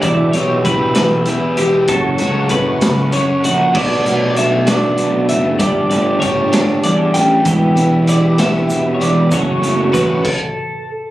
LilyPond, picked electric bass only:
\new Staff \with { instrumentName = "Picked electric bass" } { \clef bass \time 6/8 \key b \minor \tempo 4. = 65 e,,8 b,,8 e,,8 b,,8 e,8 e,,8 | fis,,8 cis,8 fis,,8 cis,8 fis,8 ais,,8 | b,,8 b,,8 b,,4 b,,8 fis,,8 | g,,8 g,,8 g,,4 e,8 a,,8 |
e,,8 e,,8 e,,4 e,,8 e,,8 | fis,,8 fis,,8 a,,8 r4. | }